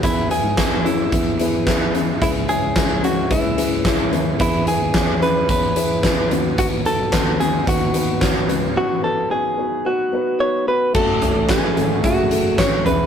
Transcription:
<<
  \new Staff \with { instrumentName = "Clean electric guitar" } { \time 4/4 \key e \major \tempo 4 = 110 e'8 gis'4 e'2 r8 | e'8 gis'4 fis'8 e'4. r8 | e'8 gis'4 b'8 b'4. r8 | fis'8 a'4 gis'8 fis'4. r8 |
fis'8 a'8 gis'4 fis'4 cis''8 b'8 | a'4 gis'4 fis'4 cis''8 b'8 | }
  \new Staff \with { instrumentName = "Upright piano" } { \time 4/4 \key e \major <b e' gis' b'>8 <b e' b'>8 <b e' gis' b'>8 <b e' gis' cis''>8 <b e' gis' b'>8 <b e' gis' b'>8 <b e' gis' b'>8 <b e' gis' b'>8 | <cis' e' gis' b'>8 <cis' e' cis''>8 <cis' e' gis' b'>8 <cis' e' gis' cis''>8 <cis' e' gis' b'>8 <cis' e' gis' b'>8 <cis' e' gis' cis''>8 <cis' e' gis' b'>8 | <b e' gis' b'>8 <b e' gis' b'>8 <b e' gis' cis''>8 <b e' gis' b'>8 <b e' gis' cis''>8 <b e' gis' b'>8 <b e' gis' b'>8 <b dis' fis' b'>8~ | <b dis' fis' b'>8 <b dis' fis' b'>8 <b dis' fis' b'>8 <b dis' fis' b'>8 <b dis' fis' b'>8 <b dis' fis' b'>8 <b dis' fis' cis''>8 <b dis' fis' b'>8 |
<b dis' fis' b'>8 <b dis' fis' b'>8 <b dis' fis' b'>8 <b dis' fis' b'>8 <b dis' fis' b'>8 <b dis' fis' b'>8 <b dis' fis' b'>8 <b dis' fis' b'>8 | <a cis' fis' a'>8 <a cis' fis' a'>8 <a cis' fis' b'>8 <a cis' fis' a'>8 <a cis' fis' gis'>8 <a cis' fis' a'>8 <a cis' fis' b'>8 <b e' gis' b'>8 | }
  \new Staff \with { instrumentName = "Upright piano" } { \clef bass \time 4/4 \key e \major e4. r2 r8 | cis4. r2 r8 | e4. r2 dis8~ | dis4 r2 r8 dis8~ |
dis4 r2. | r2. r8 e8 | }
  \new Staff \with { instrumentName = "Analog synth pad" } { \clef bass \time 4/4 \key e \major r1 | r1 | r1 | r1 |
r1 | <fis a cis'>2.~ <fis a cis'>8 <e gis b>8 | }
  \new Staff \with { instrumentName = "Fingered electric bass" } { \clef bass \time 4/4 \key e \major e,8. gis,16 e,4 e,2 | cis,8. cis,16 cis,4 cis,4. dis,8 | e,8. dis,16 e,4 e,4. dis,8~ | dis,8. b,,16 dis,4 dis,4. cis,8 |
r1 | fis,,8. a,,8 r16 gis,,8 fis,,4 gis,,8 e,,8 | }
  \new DrumStaff \with { instrumentName = "Drums" } \drummode { \time 4/4 <hh bd>8 hh8 <hc hh bd sn>8 hh8 <hh bd>8 hh8 <hc hh bd sn>8 hh8 | <hh bd>8 hh8 <hc hh bd sn>8 hh8 <hh bd>8 hh8 <hc hh bd sn>8 hh8 | <hh bd>8 hh8 <hc hh bd sn>8 hh8 <hh bd>8 hh8 <hc hh bd sn>8 hh8 | <hh bd>8 hh8 <hc hh bd sn>8 hh8 <hh bd>8 hh8 <hc hh bd sn>8 hh8 |
r4 r4 r4 r4 | <cymc bd>8 <hh tomfh>8 <hc hh bd sn>8 hh8 <hh bd>8 hh8 <hc hh bd sn>8 <hh tomfh>8 | }
>>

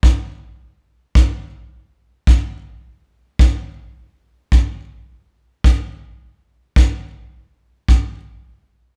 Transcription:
\new DrumStaff \with { instrumentName = "Drums" } \drummode { \time 12/8 \tempo 4. = 53 bd4. bd4. bd4. bd4. | bd4. bd4. bd4. bd4. | }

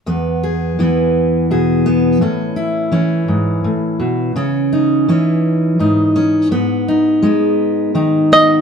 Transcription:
<<
  \new Staff \with { instrumentName = "Five-string banjo" } { \time 6/8 \key e \major \tempo 4. = 56 r2. | r2. | r2. | r2 r8 dis''8 | }
  \new Staff \with { instrumentName = "Steel-string acoustic guitar" } { \time 6/8 \key e \major << { b8 gis'8 b4 gis'8 b8 | cis'8 e'8 cis'2 | cis'8 dis'8 cis'4 dis'8 cis'8 | b8 dis'8 b4 dis'8 b8 | } \\ { e,4 e4 b,4 | a,4 e8 gis,8 a,8 b,8 | cis4 e4 gis,4 | gis,4 gis4 dis4 | } >> }
>>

